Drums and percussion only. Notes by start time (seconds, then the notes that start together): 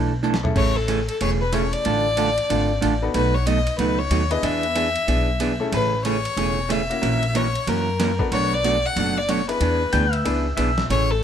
0.23 hi-hat pedal
0.34 snare
0.45 floor tom
0.56 kick, crash
0.88 hi-hat pedal, ride
1.09 ride
1.21 ride
1.53 hi-hat pedal, ride
1.73 ride
1.85 ride
2.17 hi-hat pedal, ride
2.38 ride
2.50 ride
2.82 hi-hat pedal, ride
3.14 ride
3.47 hi-hat pedal, ride
3.67 ride
3.79 ride
4.11 hi-hat pedal, ride
4.31 ride
4.43 ride
4.63 ride
4.76 hi-hat pedal, ride
4.96 ride
5.08 ride
5.40 hi-hat pedal, ride
5.73 ride
6.05 hi-hat pedal, ride
6.25 ride
6.37 ride
6.70 hi-hat pedal, ride
6.91 ride
7.03 ride
7.23 ride
7.35 hi-hat pedal, ride
7.55 ride
7.67 ride
8.00 snare, hi-hat pedal, ride
8.20 kick
8.32 ride
8.64 hi-hat pedal, ride
8.97 ride
9.29 hi-hat pedal, ride
9.49 ride
9.61 ride
9.93 hi-hat pedal, ride
10.13 ride
10.26 ride
10.57 hi-hat pedal, ride
10.78 snare
10.90 ride